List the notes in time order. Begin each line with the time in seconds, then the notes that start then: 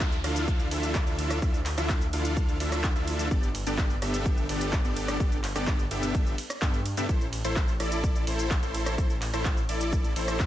Already playing: D2 D4 E4 F4 A4 E5, downlifter
0.01 kick, clap, closed hi-hat, shaker
0.12 closed hi-hat, shaker
0.24 D2 D4 E4 F4 A4 F5, cross-stick, open hi-hat, ride
0.36 closed hi-hat, shaker
0.48 kick, closed hi-hat, shaker
0.60 closed hi-hat, shaker
0.71 D2 D4 E4 F4 A4 E5, open hi-hat, ride
0.83 closed hi-hat, shaker
0.95 kick, clap, closed hi-hat, shaker
1.07 D2 D4 E4 F4 A4 E5, closed hi-hat, shaker
1.19 open hi-hat, ride
1.30 cross-stick, closed hi-hat, shaker
1.42 D2 D4 E4 F4 A4 E5, kick, closed hi-hat, shaker
1.54 closed hi-hat, shaker
1.66 clap, open hi-hat, ride
1.78 D2 D4 E4 F4 A4 E5, cross-stick, closed hi-hat, shaker
1.89 kick, clap, closed hi-hat, shaker
2.01 closed hi-hat, shaker
2.13 D2 D4 E4 F4 A4 F5, open hi-hat, ride
2.25 closed hi-hat, shaker
2.37 kick, closed hi-hat, shaker
2.48 closed hi-hat, shaker
2.60 D2 D4 E4 F4 A4 E5, open hi-hat, ride
2.72 cross-stick, closed hi-hat, shaker
2.84 kick, clap, closed hi-hat, shaker
2.96 D2 D4 E4 F4 A4 E5, closed hi-hat, shaker
3.08 open hi-hat, ride
3.19 closed hi-hat, shaker
3.31 G1 B3 D4 G4 A4 D5, kick, closed hi-hat, shaker
3.43 closed hi-hat, shaker
3.55 open hi-hat, ride
3.67 G1 B3 D4 G4 A4 D5, closed hi-hat, shaker
3.78 kick, clap, closed hi-hat, shaker
3.90 closed hi-hat, shaker
4.02 G1 B3 D4 G4 A4 E5, cross-stick, open hi-hat, ride
4.14 closed hi-hat, shaker
4.26 kick, closed hi-hat, shaker
4.38 closed hi-hat, shaker
4.49 G1 B3 D4 G4 A4 D5, open hi-hat, ride
4.61 closed hi-hat, shaker
4.73 kick, clap, closed hi-hat, shaker
4.85 G1 B3 D4 G4 A4 D5, closed hi-hat, shaker
4.96 open hi-hat, ride
5.08 cross-stick, closed hi-hat, shaker
5.20 G1 B3 D4 G4 A4 D5, kick, closed hi-hat, shaker
5.32 closed hi-hat, shaker
5.44 clap, open hi-hat, ride
5.56 G1 B3 D4 G4 A4 D5, cross-stick, closed hi-hat, shaker
5.67 kick, clap, closed hi-hat, shaker
5.79 closed hi-hat, shaker
5.91 G1 B3 D4 G4 A4 E5, open hi-hat, ride
6.03 closed hi-hat, shaker
6.15 kick, closed hi-hat, shaker
6.26 closed hi-hat, shaker
6.38 open hi-hat, ride
6.50 cross-stick, closed hi-hat, shaker
6.62 G2 B3 D4 G4 A4 E5, kick, clap, closed hi-hat, shaker
6.74 closed hi-hat, shaker
6.86 open hi-hat, ride
6.97 G2 B3 D4 G4 A4 E5, closed hi-hat, shaker
7.09 A1 E4 A4 C5, kick, closed hi-hat, shaker
7.21 closed hi-hat, shaker
7.33 open hi-hat, ride
7.45 A1 E4 A4 C5, closed hi-hat, shaker
7.56 kick, clap, closed hi-hat, shaker
7.68 closed hi-hat, shaker
7.80 A1 E4 A4 D5, cross-stick, open hi-hat, ride
7.92 closed hi-hat, shaker
8.04 kick, closed hi-hat, shaker
8.15 closed hi-hat, shaker
8.27 A1 E4 A4 C5, open hi-hat, ride
8.39 closed hi-hat, shaker
8.51 kick, clap, closed hi-hat, shaker
8.63 A1 E4 A4 C5, closed hi-hat, shaker
8.74 open hi-hat, ride
8.86 cross-stick, closed hi-hat, shaker
8.98 A1 E4 A4 C5, kick, closed hi-hat, shaker
9.10 closed hi-hat, shaker
9.22 clap, open hi-hat, ride
9.34 A1 E4 A4 C5, cross-stick, closed hi-hat, shaker
9.45 kick, clap, closed hi-hat, shaker
9.57 closed hi-hat, shaker
9.69 A1 E4 A4 D5, open hi-hat, ride
9.81 closed hi-hat, shaker
9.93 kick, closed hi-hat, shaker
10.04 closed hi-hat, shaker
10.16 A1 E4 A4 C5, open hi-hat, ride
10.28 cross-stick, closed hi-hat, shaker
10.40 kick, clap, closed hi-hat, shaker